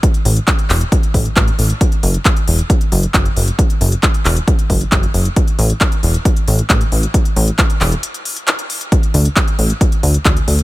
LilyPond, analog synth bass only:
\new Staff \with { instrumentName = "Analog synth bass" } { \clef bass \time 4/4 \key e \mixolydian \tempo 4 = 135 r8 a,,8 r8 e,,8 r8 a,,8 a,,8 a,,8 | r8 fis,,8 r8 e,,8 r8 fis,,8 fis,,8 fis,,8 | r8 fis,,8 r8 e,,8 r8 fis,,8 fis,,8 fis,,8 | r8 a,,8 r8 e,,8 r8 a,,8 a,,8 a,,8 |
r8 a,,8 r8 e,,8 r2 | r8 d,8 r8 a,,8 r8 d,8 d,8 d,8 | }